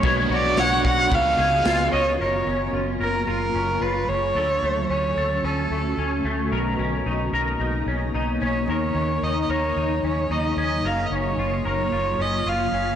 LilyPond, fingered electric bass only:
\new Staff \with { instrumentName = "Fingered electric bass" } { \clef bass \time 4/4 \key fis \major \tempo 4 = 111 b,,8 b,,8 b,,8 b,,8 cis,8 cis,8 cis,8 cis,8 | fis,,8 fis,,8 fis,,8 fis,,8 fis,,8 fis,,8 fis,,8 fis,,8 | d,8 d,8 d,8 d,8 d,8 d,8 d,8 d,8 | b,,8 b,,8 b,,8 b,,8 b,,8 b,,8 b,,8 b,,8 |
dis,8 dis,8 dis,8 dis,8 dis,8 dis,8 dis,8 dis,8 | fis,,8 fis,,8 fis,,8 fis,,8 fis,,8 fis,,8 fis,,8 fis,,8 | }